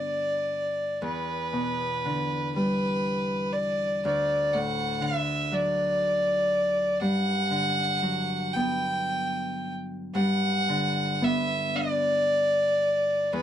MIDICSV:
0, 0, Header, 1, 3, 480
1, 0, Start_track
1, 0, Key_signature, 1, "major"
1, 0, Tempo, 1032702
1, 475, Time_signature, 6, 3, 24, 8
1, 952, Tempo, 993377
1, 3832, Tempo, 1061947
1, 6279, End_track
2, 0, Start_track
2, 0, Title_t, "Fiddle"
2, 0, Program_c, 0, 110
2, 0, Note_on_c, 0, 74, 63
2, 473, Note_off_c, 0, 74, 0
2, 482, Note_on_c, 0, 71, 69
2, 1178, Note_off_c, 0, 71, 0
2, 1197, Note_on_c, 0, 71, 70
2, 1667, Note_on_c, 0, 74, 66
2, 1674, Note_off_c, 0, 71, 0
2, 1910, Note_off_c, 0, 74, 0
2, 1920, Note_on_c, 0, 74, 72
2, 2152, Note_on_c, 0, 78, 75
2, 2159, Note_off_c, 0, 74, 0
2, 2387, Note_on_c, 0, 76, 71
2, 2395, Note_off_c, 0, 78, 0
2, 2636, Note_on_c, 0, 74, 73
2, 2644, Note_off_c, 0, 76, 0
2, 3347, Note_off_c, 0, 74, 0
2, 3350, Note_on_c, 0, 78, 93
2, 4067, Note_on_c, 0, 79, 72
2, 4073, Note_off_c, 0, 78, 0
2, 4611, Note_off_c, 0, 79, 0
2, 4799, Note_on_c, 0, 78, 80
2, 5290, Note_on_c, 0, 76, 73
2, 5297, Note_off_c, 0, 78, 0
2, 5525, Note_on_c, 0, 74, 77
2, 5532, Note_off_c, 0, 76, 0
2, 6238, Note_on_c, 0, 71, 88
2, 6245, Note_off_c, 0, 74, 0
2, 6279, Note_off_c, 0, 71, 0
2, 6279, End_track
3, 0, Start_track
3, 0, Title_t, "Harp"
3, 0, Program_c, 1, 46
3, 0, Note_on_c, 1, 43, 38
3, 0, Note_on_c, 1, 50, 33
3, 0, Note_on_c, 1, 59, 37
3, 0, Note_on_c, 1, 62, 37
3, 473, Note_on_c, 1, 40, 48
3, 499, Note_off_c, 1, 43, 0
3, 499, Note_off_c, 1, 50, 0
3, 710, Note_on_c, 1, 47, 34
3, 945, Note_off_c, 1, 59, 0
3, 954, Note_on_c, 1, 50, 38
3, 975, Note_off_c, 1, 47, 0
3, 1048, Note_off_c, 1, 62, 0
3, 1199, Note_on_c, 1, 55, 37
3, 1918, Note_on_c, 1, 38, 53
3, 1938, Note_off_c, 1, 40, 0
3, 1938, Note_off_c, 1, 50, 0
3, 1938, Note_off_c, 1, 55, 0
3, 2156, Note_on_c, 1, 45, 40
3, 2381, Note_on_c, 1, 50, 43
3, 2417, Note_off_c, 1, 45, 0
3, 2628, Note_on_c, 1, 54, 43
3, 3351, Note_on_c, 1, 43, 50
3, 3373, Note_off_c, 1, 38, 0
3, 3373, Note_off_c, 1, 50, 0
3, 3373, Note_off_c, 1, 54, 0
3, 3588, Note_on_c, 1, 50, 38
3, 3838, Note_on_c, 1, 54, 41
3, 4080, Note_on_c, 1, 59, 37
3, 4794, Note_off_c, 1, 43, 0
3, 4799, Note_on_c, 1, 43, 53
3, 4818, Note_off_c, 1, 50, 0
3, 4818, Note_off_c, 1, 54, 0
3, 5043, Note_on_c, 1, 50, 45
3, 5280, Note_off_c, 1, 59, 0
3, 5282, Note_on_c, 1, 59, 46
3, 5525, Note_on_c, 1, 62, 43
3, 6238, Note_on_c, 1, 40, 59
3, 6257, Note_off_c, 1, 43, 0
3, 6257, Note_off_c, 1, 50, 0
3, 6279, Note_off_c, 1, 40, 0
3, 6279, Note_off_c, 1, 59, 0
3, 6279, Note_off_c, 1, 62, 0
3, 6279, End_track
0, 0, End_of_file